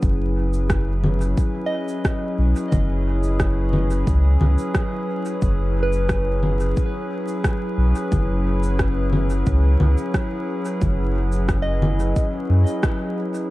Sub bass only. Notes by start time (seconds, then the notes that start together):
0.03 F#1
2.39 B1
2.72 F#1
4.07 C#2
4.41 C#2
5.42 F#1
7.78 B1
8.12 F#1
9.47 C#2
9.80 C#2
10.82 F#1
12.50 F#2